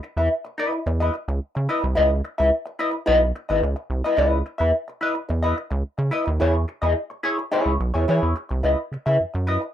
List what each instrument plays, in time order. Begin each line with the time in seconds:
0.03 muted hollow-body jazz guitar stroke
0.17 analog synth bass E2, hollow-body jazz guitar E4 B4 E5
0.45 muted hollow-body jazz guitar stroke
0.58 hollow-body jazz guitar E4 B4 D#5
0.72 muted hollow-body jazz guitar stroke
0.86 analog synth bass E2, muted hollow-body jazz guitar stroke
1.00 hollow-body jazz guitar E4 B4 D#5
1.14 muted hollow-body jazz guitar stroke
1.28 analog synth bass C#2, muted hollow-body jazz guitar stroke
1.55 analog synth bass C#3, muted hollow-body jazz guitar stroke
1.69 hollow-body jazz guitar E4 B4 D#5
1.82 analog synth bass C2, muted hollow-body jazz guitar stroke
1.95 analog synth bass C#2, hollow-body jazz guitar E4 B4 D#5
2.24 muted hollow-body jazz guitar stroke
2.38 analog synth bass C#2, hollow-body jazz guitar E4 B4 E5
2.66 muted hollow-body jazz guitar stroke
2.79 hollow-body jazz guitar E4 B4 D#5
2.91 muted hollow-body jazz guitar stroke
3.06 analog synth bass B1, hollow-body jazz guitar E4 B4 D#5
3.35 muted hollow-body jazz guitar stroke
3.49 analog synth bass G#1, hollow-body jazz guitar E4 B4 D#5
3.63 analog synth bass C#2, muted hollow-body jazz guitar stroke
3.76 muted hollow-body jazz guitar stroke
3.90 analog synth bass C2
4.04 hollow-body jazz guitar E4 B4 D#5
4.16 analog synth bass C#2, hollow-body jazz guitar E4 B4 D#5
4.46 muted hollow-body jazz guitar stroke
4.58 analog synth bass E2, hollow-body jazz guitar E4 B4 E5
4.88 muted hollow-body jazz guitar stroke
5.01 hollow-body jazz guitar E4 B4 D#5
5.15 muted hollow-body jazz guitar stroke
5.29 analog synth bass E2, muted hollow-body jazz guitar stroke
5.43 hollow-body jazz guitar E4 B4 D#5
5.57 muted hollow-body jazz guitar stroke
5.71 analog synth bass C#2, muted hollow-body jazz guitar stroke
5.98 analog synth bass C#3, muted hollow-body jazz guitar stroke
6.11 hollow-body jazz guitar E4 B4 D#5
6.26 analog synth bass D#2, muted hollow-body jazz guitar stroke
6.40 analog synth bass E2, hollow-body jazz guitar E4 G#4 C#5
6.68 muted hollow-body jazz guitar stroke
6.82 analog synth bass E2, hollow-body jazz guitar E4 G#4 D#5
7.10 muted hollow-body jazz guitar stroke
7.23 hollow-body jazz guitar E4 G#4 C#5
7.39 muted hollow-body jazz guitar stroke
7.52 hollow-body jazz guitar E4 G#4 C#5
7.66 analog synth bass C#2
7.80 analog synth bass B1, muted hollow-body jazz guitar stroke
7.94 analog synth bass E2, hollow-body jazz guitar E4 G#4 C#5
8.08 analog synth bass E3, hollow-body jazz guitar E4 G#4 C#5
8.23 analog synth bass E2
8.36 muted hollow-body jazz guitar stroke
8.49 analog synth bass C2, muted hollow-body jazz guitar stroke
8.63 analog synth bass C#2, hollow-body jazz guitar E4 B4 D#5
8.92 analog synth bass C#3, muted hollow-body jazz guitar stroke
9.06 analog synth bass C#3, hollow-body jazz guitar E4 B4 E5
9.20 analog synth bass F#2
9.34 analog synth bass F#2, muted hollow-body jazz guitar stroke
9.47 hollow-body jazz guitar E4 B4 D#5
9.62 muted hollow-body jazz guitar stroke